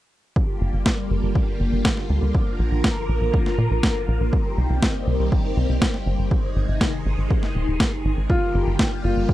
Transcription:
0.36 4.29 D3 medium
0.36 2.33 G3 medium
0.36 2.33 A#3 medium
0.36 4.29 F4 medium
0.36 2.33 G4 medium
0.36 kick loud
0.61 0.72 G1 medium
0.73 0.84 G1 medium
0.86 kick loud
0.86 snare loud
1.10 1.21 G1 medium
1.23 1.34 G1 medium
1.35 kick loud
1.60 1.71 G1 medium
1.72 1.83 G1 medium
1.85 kick loud
1.85 snare loud
1.97 snare soft
2.10 2.21 D2 medium
2.22 2.33 D2 medium
2.35 4.31 F3 medium
2.35 4.31 A#3 medium
2.35 4.31 A#4 medium
2.35 kick loud
2.59 2.70 A#1 medium
2.72 2.82 A#1 medium
2.84 kick loud
2.84 snare loud
3.09 3.20 A#1 medium
3.21 3.32 A#1 medium
3.34 kick loud
3.46 snare soft
3.58 3.69 A#2 medium
3.71 3.82 A#1 medium
3.83 kick loud
3.83 snare loud
4.08 4.19 A#1 medium
4.20 4.31 A#1 medium
4.33 6.29 D#3 medium
4.33 6.29 G3 medium
4.33 6.29 A#3 medium
4.33 6.29 C4 medium
4.33 6.29 G4 medium
4.33 kick loud
4.58 4.68 C2 medium
4.70 4.81 C2 medium
4.82 kick loud
4.82 snare loud
5.07 5.18 C2 medium
5.19 5.30 C2 medium
5.32 kick loud
5.57 5.68 C2 medium
5.69 5.80 C2 medium
5.82 kick loud
5.82 snare loud
5.94 snare soft
6.06 6.17 G1 loud
6.19 6.30 G1 medium
6.31 8.28 C3 medium
6.31 8.28 D#3 medium
6.31 8.28 G#3 medium
6.31 8.28 D#4 medium
6.31 8.28 G#4 medium
6.31 kick loud
6.56 6.67 G#1 medium
6.68 6.79 G#1 medium
6.81 kick loud
6.81 snare loud
7.06 7.16 G#1 medium
7.18 7.29 G#1 medium
7.30 kick loud
7.43 snare soft
7.55 7.66 D#1 medium
7.68 7.78 D#1 medium
7.80 kick loud
7.80 snare loud
8.05 8.16 G#1 medium
8.17 8.28 G#1 medium
8.30 9.34 D3 medium
8.30 9.34 G3 medium
8.30 9.34 A#3 medium
8.30 8.56 F4 medium
8.30 9.34 F4 medium
8.30 9.34 G4 medium
8.30 kick loud
8.54 8.65 G1 medium
8.67 8.78 G1 medium
8.79 kick loud
8.79 snare loud
9.04 9.15 G1 medium
9.04 9.34 F4 medium
9.16 9.27 G1 medium
9.29 kick loud

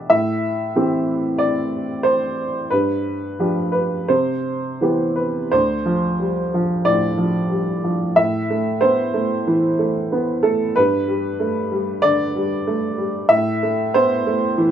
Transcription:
0.00 0.12 E3 soft
0.00 0.12 D4 soft
0.00 0.13 G4 soft
0.00 0.12 D5 medium
0.00 0.10 E5 medium
0.10 0.74 A2 medium
0.10 1.40 E5 medium
0.76 2.67 E3 soft
0.76 2.67 C4 soft
0.76 2.67 G4 soft
1.38 2.04 D5 medium
2.03 2.70 C5 medium
2.70 3.36 G2 soft
2.70 3.70 B4 medium
3.39 4.06 F3 soft
3.39 4.06 D4 soft
3.39 4.06 G4 soft
3.72 4.09 B4 soft
4.08 4.80 C3 soft
4.08 4.82 C5 medium
4.81 5.48 E3 soft
4.81 5.49 B3 soft
4.81 5.49 G4 soft
5.16 5.52 B4 soft
5.51 6.82 D2 soft
5.51 6.86 C5 medium
5.85 6.40 F3 soft
6.20 6.53 G3 soft
6.54 7.06 F3 soft
6.85 7.38 A2 soft
6.85 8.16 D5 medium
7.18 7.70 F3 soft
7.50 7.83 G3 soft
7.84 8.17 F3 soft
8.16 9.43 A2 soft
8.16 8.82 E5 medium
8.50 9.02 A3 soft
8.81 9.15 B3 soft
8.81 10.12 C5 medium
9.14 9.66 A3 soft
9.47 9.99 E3 soft
9.79 10.31 A3 soft
10.12 10.45 B3 soft
10.43 10.76 A3 soft
10.43 10.76 A4 medium
10.76 12.00 G2 medium
10.76 12.03 B4 medium
11.08 11.59 G3 soft
11.40 11.72 A3 soft
11.72 12.23 G3 soft
12.02 12.54 D3 soft
12.02 13.30 D5 medium
12.36 12.86 G3 soft
12.67 12.99 A3 soft
12.98 13.30 G3 soft
13.29 14.53 A2 medium
13.29 13.94 E5 medium
13.63 14.13 A3 soft
13.94 14.26 B3 soft
13.94 14.71 C5 medium
14.26 14.71 A3 soft
14.58 14.71 E3 soft

